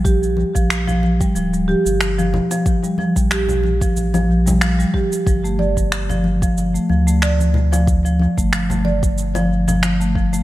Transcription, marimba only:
X:1
M:4/4
L:1/16
Q:"Swing 16ths" 1/4=92
K:Gm
V:1 name="Marimba" clef=bass
G z2 F,2 F, z G, F, G, G z2 F,2 F, | z G, F, G, G z2 F,2 F, z G, F, G, G z | F, A, d z2 F,2 F, z A, F, A, d z2 F,- | F, F, z A, F, A, d z2 F,2 F, z A, F, A, |]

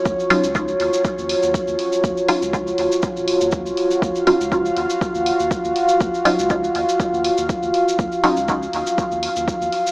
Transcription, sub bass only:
X:1
M:4/4
L:1/16
Q:"Swing 16ths" 1/4=121
K:Ebm
V:1 name="Sub bass" clef=bass
E,, z2 D,,2 z E,, z2 E,, z E,, z E,, z2 | E,, z2 D,,2 z E,, z2 E,,, z E,,2 B,,, z2 | E,, z2 D,,2 z E,, z2 E,, z E,, z E,, z2 | E,, z2 D,,2 z E,, z2 E,, z E,, z E,, z2 |
E,, z2 D,,2 z E,, z2 E,, z E,, z E,, z2 |]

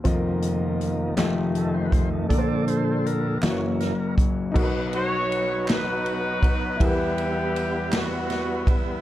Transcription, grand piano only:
X:1
M:6/8
L:1/8
Q:3/8=53
K:Fmix
V:1 name="Grand piano"
[F,,,F,,CFABe]3 [F,,,F,,_A,=A,FGe]3 | [B,,,B,,B,DABc]3 [_G,,,_G,,B,_F_G_c_d]3 | [K:B] [B,,,B,,DFAB]6 | [E,,E,=G,EAB]6 |]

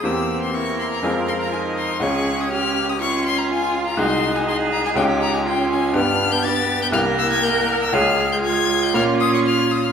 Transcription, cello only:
X:1
M:4/4
L:1/8
Q:1/4=122
K:Dblyd
V:1 name="Cello"
G2 B6 | A2 G2 F4 | E2 A2 G2 F2 | =D2 G2 B4 |
A2 F6 |]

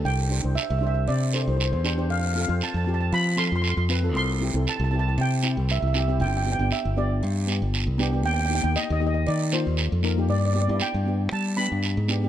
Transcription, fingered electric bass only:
X:1
M:4/4
L:1/16
Q:1/4=117
K:Gmix
V:1 name="Fingered electric bass" clef=bass
C,,3 C,, z C,,3 C,3 C,,2 E,,3 | F,,3 F,, z F,,3 F,3 F,,2 F,,3 | C,,3 C,, z C,,3 C,3 C,,2 C,,3 | G,,,3 G,,, z G,,,3 G,,3 G,,,2 C,,3 |
_E,,3 E,, z E,,3 _E,3 E,,2 F,,3 | G,,3 G,, z G,,3 G,3 G,,2 _A,,3 |]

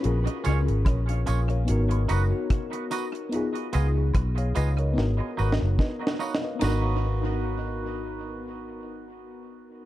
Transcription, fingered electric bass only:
X:1
M:4/4
L:1/16
Q:"Swing 16ths" 1/4=73
K:G#dor
V:1 name="Fingered electric bass" clef=bass
A,,, z C,, G,,, A,,,2 A,,,2 G,,,2 F,,, z4 z | z2 C,,2 B,,,2 C,,2 G,,, z G,,, F,,, z4 | G,,,16 |]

